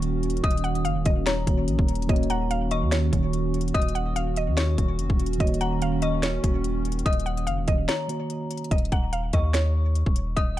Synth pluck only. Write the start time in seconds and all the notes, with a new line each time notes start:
Already playing: C#5
0.44 D#5
0.64 F#5
0.85 F5
1.06 D#5
1.26 C#5
2.09 D#5
2.30 F#5
2.51 F5
2.71 D#5
2.92 C#5
3.74 D#5
3.95 F#5
4.16 F5
4.37 D#5
4.57 C#5
5.40 D#5
5.61 F#5
5.82 F5
6.02 D#5
6.23 C#5
7.06 D#5
7.26 F#5
7.47 F5
7.68 D#5
7.89 C#5
8.71 D#5
8.92 F#5
9.13 F5
9.33 D#5
9.54 C#5
10.36 D#5